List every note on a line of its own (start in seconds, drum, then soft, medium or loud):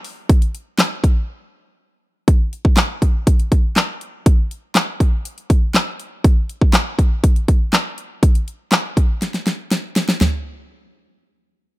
0.04 open hi-hat medium
0.29 kick loud
0.29 closed hi-hat loud
0.42 closed hi-hat medium
0.55 closed hi-hat medium
0.78 snare loud
0.78 clap loud
0.78 closed hi-hat medium
1.04 kick medium
1.04 closed hi-hat medium
2.28 kick loud
2.28 closed hi-hat loud
2.53 closed hi-hat medium
2.65 kick medium
2.77 snare medium
2.77 clap loud
2.77 closed hi-hat medium
3.02 kick medium
3.02 closed hi-hat medium
3.27 kick loud
3.27 closed hi-hat loud
3.40 closed hi-hat soft
3.52 kick medium
3.52 closed hi-hat medium
3.76 snare medium
3.76 clap loud
3.76 closed hi-hat medium
4.01 closed hi-hat medium
4.26 kick loud
4.26 closed hi-hat loud
4.51 closed hi-hat medium
4.75 snare loud
4.75 clap loud
4.75 closed hi-hat medium
5.00 kick medium
5.00 closed hi-hat medium
5.25 closed hi-hat loud
5.38 closed hi-hat soft
5.50 kick loud
5.50 closed hi-hat medium
5.74 snare medium
5.74 clap loud
5.74 closed hi-hat medium
6.00 closed hi-hat medium
6.24 kick loud
6.24 closed hi-hat loud
6.49 closed hi-hat medium
6.61 kick medium
6.73 snare medium
6.73 clap loud
6.73 closed hi-hat medium
6.99 kick medium
6.99 closed hi-hat medium
7.24 kick loud
7.24 closed hi-hat loud
7.36 closed hi-hat soft
7.48 kick medium
7.48 closed hi-hat medium
7.73 snare medium
7.73 clap loud
7.73 closed hi-hat medium
7.98 closed hi-hat medium
8.23 kick loud
8.23 closed hi-hat loud
8.35 closed hi-hat medium
8.48 closed hi-hat medium
8.72 snare loud
8.72 clap loud
8.72 closed hi-hat medium
8.97 kick medium
8.97 closed hi-hat medium
9.22 snare medium
9.22 closed hi-hat loud
9.34 snare medium
9.34 closed hi-hat medium
9.47 snare medium
9.47 closed hi-hat medium
9.71 snare medium
9.71 closed hi-hat medium
9.96 snare loud
9.96 closed hi-hat medium
10.09 snare loud
10.21 snare loud
10.21 floor tom loud